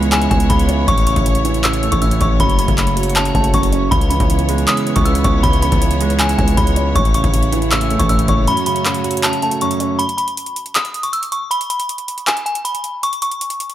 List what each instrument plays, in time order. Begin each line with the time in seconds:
Already playing: 808-style bass C#2, grand piano C#3 E3 G#3 B3 C#4, string section B3 E4 C#5
0.03 closed hi-hat
0.12 grand piano C#3, synth bell G#5, clap, closed hi-hat
0.22 closed hi-hat
0.31 808-style bass C#2, grand piano B3, synth bell G#5, kick, closed hi-hat
0.40 closed hi-hat
0.50 808-style bass C#2, grand piano C#3, synth bell B5, kick, closed hi-hat
0.59 closed hi-hat
0.69 grand piano C#4, closed hi-hat
0.88 808-style bass A1, grand piano A2, string section A3, synth bell C#6, kick, closed hi-hat
0.98 closed hi-hat
1.07 grand piano C#3, synth bell C#6, closed hi-hat
1.16 808-style bass A1, kick, closed hi-hat
1.26 grand piano A2, closed hi-hat
1.35 closed hi-hat
1.45 grand piano E3, closed hi-hat
1.54 closed hi-hat
1.64 grand piano A2, synth bell E6, clap, closed hi-hat
1.73 closed hi-hat
1.83 grand piano A3, closed hi-hat
1.92 808-style bass A1, synth bell C#6, kick, closed hi-hat
2.02 grand piano A2, synth bell E6, closed hi-hat
2.11 closed hi-hat
2.21 808-style bass A1, grand piano C#4, synth bell C#6, kick, closed hi-hat
2.40 808-style bass F#1, grand piano F#2, string section F#4, synth bell B5, kick, closed hi-hat
2.50 closed hi-hat
2.59 grand piano C#3, synth bell B5, closed hi-hat
2.68 808-style bass F#1, kick, closed hi-hat
2.78 grand piano F#2, clap, closed hi-hat
2.87 closed hi-hat
2.96 grand piano F#3, closed hi-hat
3.03 closed hi-hat
3.10 closed hi-hat
3.16 grand piano F#2, synth bell A5, clap, closed hi-hat
3.25 closed hi-hat
3.35 808-style bass F#1, grand piano A3, synth bell A5, kick, closed hi-hat
3.44 closed hi-hat
3.54 808-style bass F#1, grand piano F#2, synth bell C#6, kick, closed hi-hat
3.63 closed hi-hat
3.73 grand piano C#4, closed hi-hat
3.91 808-style bass C#2, grand piano C#3, string section B3 E4 C#5, synth bell B5, kick, closed hi-hat
4.01 closed hi-hat
4.10 grand piano E3, synth bell B5, closed hi-hat
4.20 808-style bass C#2, kick, closed hi-hat
4.30 grand piano C#3, closed hi-hat
4.39 closed hi-hat
4.49 grand piano G#3, closed hi-hat
4.58 closed hi-hat
4.67 grand piano C#3, synth bell D#6, clap, closed hi-hat
4.77 closed hi-hat
4.87 grand piano B3, closed hi-hat
4.96 808-style bass C#2, synth bell C#6, kick, closed hi-hat
5.05 grand piano C#3, synth bell E6, closed hi-hat
5.15 closed hi-hat
5.24 808-style bass C#2, grand piano C#4, synth bell C#6, kick, closed hi-hat
5.43 808-style bass C#2, grand piano C#3, synth bell B5, kick, closed hi-hat
5.53 closed hi-hat
5.62 grand piano E3, synth bell B5, closed hi-hat
5.72 808-style bass C#2, kick, closed hi-hat
5.81 grand piano C#3, closed hi-hat
5.91 closed hi-hat
6.01 grand piano G#3, closed hi-hat
6.10 closed hi-hat
6.19 grand piano C#3, synth bell G#5, clap, closed hi-hat
6.29 closed hi-hat
6.38 808-style bass C#2, grand piano B3, synth bell G#5, kick, closed hi-hat
6.48 closed hi-hat
6.57 808-style bass C#2, grand piano C#3, synth bell B5, kick, closed hi-hat
6.67 closed hi-hat
6.76 grand piano C#4, closed hi-hat
6.95 808-style bass A1, grand piano A2, string section A3 E4, synth bell C#6, kick, closed hi-hat
7.05 closed hi-hat
7.14 grand piano C#3, synth bell C#6, closed hi-hat
7.24 808-style bass A1, kick, closed hi-hat
7.34 grand piano A2, closed hi-hat
7.43 closed hi-hat
7.53 grand piano E3, closed hi-hat
7.62 closed hi-hat
7.71 grand piano A2, synth bell E6, clap, closed hi-hat
7.81 closed hi-hat
7.91 grand piano A3, closed hi-hat
7.99 808-style bass A1, synth bell C#6, kick, closed hi-hat
8.09 grand piano A2, synth bell E6, closed hi-hat
8.19 closed hi-hat
8.28 808-style bass F#1, grand piano C#4, synth bell C#6, kick, closed hi-hat
8.47 grand piano F#2, string section F#4, synth bell B5, closed hi-hat
8.57 closed hi-hat
8.66 grand piano C#3, synth bell B5, closed hi-hat
8.76 closed hi-hat
8.85 grand piano F#2, clap, closed hi-hat
8.94 closed hi-hat
9.04 grand piano F#3, closed hi-hat
9.11 closed hi-hat
9.17 closed hi-hat
9.23 grand piano F#2, synth bell A5, clap, closed hi-hat
9.33 closed hi-hat
9.42 grand piano A3, synth bell A5, closed hi-hat
9.51 closed hi-hat
9.61 grand piano F#2, synth bell C#6, closed hi-hat
9.71 closed hi-hat
9.80 grand piano C#4, closed hi-hat
9.99 synth bell B5, closed hi-hat
10.09 closed hi-hat
10.18 synth bell B5, closed hi-hat
10.28 closed hi-hat
10.37 closed hi-hat
10.46 closed hi-hat
10.56 closed hi-hat
10.66 closed hi-hat
10.75 synth bell D#6, clap, closed hi-hat
10.85 closed hi-hat
10.94 closed hi-hat
11.03 synth bell C#6, closed hi-hat
11.13 synth bell E6, closed hi-hat
11.23 closed hi-hat
11.32 synth bell C#6, closed hi-hat
11.51 synth bell B5, closed hi-hat
11.61 closed hi-hat
11.70 synth bell B5, closed hi-hat
11.80 closed hi-hat
11.89 closed hi-hat
11.98 closed hi-hat
12.08 closed hi-hat
12.18 closed hi-hat
12.27 synth bell G#5, clap, closed hi-hat
12.37 closed hi-hat
12.46 synth bell G#5, closed hi-hat
12.55 closed hi-hat
12.65 synth bell B5, closed hi-hat
12.75 closed hi-hat
12.84 closed hi-hat
13.03 synth bell C#6, closed hi-hat
13.13 closed hi-hat
13.22 synth bell C#6, closed hi-hat
13.32 closed hi-hat
13.41 closed hi-hat
13.50 closed hi-hat
13.60 closed hi-hat
13.70 closed hi-hat